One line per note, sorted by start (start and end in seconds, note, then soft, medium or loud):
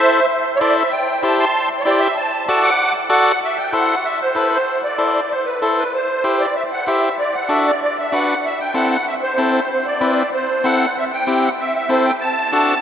0.00 0.20 E4 medium
0.00 0.20 A4 medium
0.00 0.20 C5 medium
0.00 0.25 C5 loud
0.00 0.26 E5 loud
0.56 0.58 C#5 medium
0.56 0.76 D5 loud
0.61 0.83 E4 medium
0.61 0.83 A4 medium
0.61 0.83 C5 medium
0.77 0.92 E5 medium
0.91 1.22 G5 medium
1.23 1.45 E4 medium
1.23 1.45 G4 medium
1.23 1.45 C5 medium
1.23 1.37 A5 medium
1.38 1.68 A5 medium
1.38 1.69 C6 loud
1.80 1.83 C#5 medium
1.84 2.08 E4 medium
1.84 2.08 G4 medium
1.84 2.08 C5 medium
1.84 2.00 D5 loud
2.00 2.16 E5 loud
2.16 2.46 A5 medium
2.47 2.70 F#4 medium
2.47 2.70 A4 medium
2.47 2.70 D5 medium
2.47 2.63 A5 loud
2.62 2.92 F#5 loud
2.62 2.94 D6 loud
3.10 3.32 F#4 medium
3.10 3.32 A4 medium
3.10 3.32 D5 loud
3.10 3.40 F#5 loud
3.44 3.58 E5 medium
3.58 3.74 G5 medium
3.73 3.95 E4 medium
3.73 3.95 A4 medium
3.73 3.96 C5 medium
3.73 4.06 F#5 medium
4.05 4.19 E5 medium
4.22 4.51 C5 medium
4.35 4.58 E4 medium
4.35 4.58 A4 medium
4.35 4.58 B4 medium
4.52 4.81 C5 medium
4.84 5.32 D5 medium
4.98 5.21 E4 medium
4.98 5.21 A4 medium
4.98 5.21 C5 medium
5.31 5.45 C5 medium
5.45 5.60 B4 medium
5.62 5.84 E4 medium
5.62 5.78 A4 medium
5.62 5.84 A4 medium
5.62 5.84 C5 medium
5.78 5.92 B4 medium
5.94 6.42 C5 medium
6.24 6.46 E4 medium
6.24 6.46 G4 medium
6.24 6.46 C5 medium
6.40 6.55 D5 medium
6.56 6.63 E5 medium
6.73 6.88 F#5 medium
6.87 7.09 E4 medium
6.87 7.09 G4 medium
6.87 7.09 C5 medium
6.87 7.17 E5 medium
7.19 7.35 D5 medium
7.34 7.49 F#5 medium
7.49 7.71 D4 medium
7.49 7.72 F#4 medium
7.49 7.72 A4 medium
7.49 7.67 E5 medium
7.66 7.81 D5 medium
7.82 7.98 D5 medium
7.99 8.14 E5 medium
8.12 8.34 D4 medium
8.12 8.35 F#4 medium
8.12 8.35 B4 medium
8.12 8.46 F#5 medium
8.45 8.59 E5 medium
8.60 8.74 G5 medium
8.74 8.97 C4 medium
8.74 8.97 E4 medium
8.74 8.97 A4 medium
8.74 8.89 F#5 medium
8.90 9.07 F#5 medium
9.07 9.14 E5 medium
9.23 9.69 C5 medium
9.38 9.60 C4 medium
9.38 9.60 E4 medium
9.38 9.60 A4 medium
9.70 9.86 C5 medium
9.86 10.30 D5 medium
10.01 10.23 C4 medium
10.01 10.23 E4 medium
10.01 10.23 B4 medium
10.34 10.66 C5 medium
10.64 10.86 C4 medium
10.64 10.86 E4 medium
10.64 10.87 A4 medium
10.64 10.96 F#5 loud
10.98 11.05 E5 medium
11.13 11.45 G5 loud
11.27 11.49 C4 medium
11.27 11.49 E4 medium
11.27 11.49 G4 medium
11.44 11.51 F#5 medium
11.60 11.74 E5 medium
11.76 11.89 E5 medium
11.89 12.11 C4 medium
11.89 12.11 E4 medium
11.89 12.12 A4 medium
11.89 12.07 C5 medium
12.06 12.13 G5 loud
12.20 12.81 A5 loud
12.52 12.74 D4 medium
12.52 12.75 F#4 medium
12.52 12.75 A4 medium